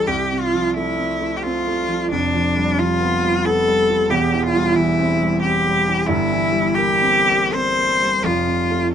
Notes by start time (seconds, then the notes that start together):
0.07 C2 G4
0.32 C3
0.39 F4
0.54 F3
0.74 A3 E4
0.98 C4
1.21 A3
1.36 G4
1.43 C4 F4
1.67 A3
1.88 F3
2.11 F1 F2 D4
2.35 F3
2.56 G3
2.79 F3 F4
3.00 B3
3.24 G3
3.45 B3 A4
3.68 G3
3.89 F3
4.09 E1 E2 G4
4.34 E3
4.42 F4
4.56 G3
4.75 E3 E4
4.99 C4
5.22 G3
5.42 C4 G4
5.67 G3
5.88 E3
6.06 G1 G2 E4
6.32 E3
6.52 G3
6.75 A#3 G4
7.02 C4
7.28 A#3
7.54 C4 C5
7.79 A#3
8.02 G3
8.23 F1 F2 F4
8.47 C3
8.71 A3